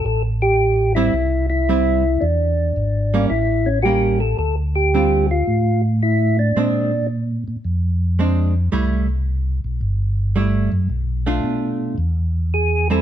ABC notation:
X:1
M:4/4
L:1/16
Q:"Swing" 1/4=111
K:Am
V:1 name="Tonewheel organ"
A2 G4 E4 E6 | D8 E2 ^C3/2 ^F/2 G2 A2 | A2 G4 F4 z2 E2 D2- | D4 z12 |
z16 | z12 ^G2 A2 |]
V:2 name="Hollow-body jazz guitar"
z6 [G,CE]2 z4 [G,CE]2 z2 | z6 [G,_B,^C]2 z4 [G,B,C]2 z2 | z4 [D,G,CF]2 z8 z2 | [_A,CD]2 z8 z2 [A,CD]2 z2 |
[G,A,E]2 z8 z2 [G,A,E]2 z2 | z2 [A,DF]6 z6 [G,^B,E]2 |]
V:3 name="Tonewheel organ" clef=bass
A,,,8 C,,8 | E,,4 ^G,,,4 A,,,8 | D,,8 A,,8 | _B,,6 B,,2 F,,8 |
C,,6 B,,,2 G,,,6 ^F,,2 | B,,,4 B,,4 E,,8 |]